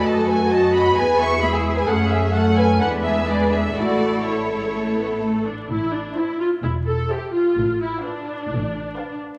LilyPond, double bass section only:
\new Staff \with { instrumentName = "Double bass section" } { \clef bass \time 4/4 \key a \major \tempo 4 = 128 fis,2 e,2 | fis,2 e,2 | a,,2.~ a,,8 r8 | \key a \minor a,,4 r4 e,,4 r4 |
a,,4 r4 a,,4 r4 | }